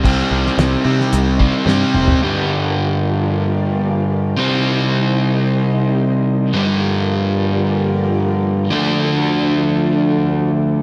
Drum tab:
CC |x---------------|----------------|----------------|----------------|
HH |----x---x-------|----------------|----------------|----------------|
SD |---oo--o----o---|----------------|----------------|----------------|
T2 |--------------o-|----------------|----------------|----------------|
FT |---------------o|----------------|----------------|----------------|
BD |o---------o-----|----------------|----------------|----------------|

CC |----------------|
HH |----------------|
SD |----------------|
T2 |----------------|
FT |----------------|
BD |----------------|